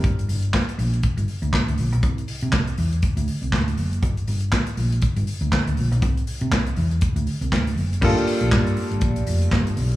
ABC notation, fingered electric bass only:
X:1
M:4/4
L:1/16
Q:"Swing 16ths" 1/4=120
K:Gdor
V:1 name="Fingered electric bass" clef=bass
G,,,2 G,,,2 z2 B,,,2 z G,,, z D,, z D,, B,,, =B,,, | C,,2 z C, C,,2 E,,2 z D,, z C,, D,,2 ^F,,,2 | G,,,2 G,,,2 z2 B,,,2 z G,,, z D,, z D,, B,,, =B,,, | C,,2 z C, C,,2 E,,2 z D,, z C,, D,,2 ^F,,,2 |
G,,, z2 B,,, G,,2 z G,,, B,,,2 F,,,2 G,,,2 =B,,,2 |]